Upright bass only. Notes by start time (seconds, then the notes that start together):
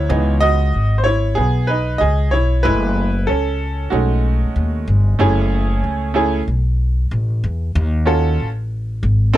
0.10 C#2
0.74 G#1
1.38 B1
2.01 C#2
2.33 B1
2.65 F#1
3.29 C#2
3.92 B1
4.44 muted upright bass stroke
4.56 D#2
4.88 G1
5.19 F#1
5.84 C#2
6.47 B1
7.11 A1
7.44 E2
7.75 D#2
8.40 A1
9.03 G#1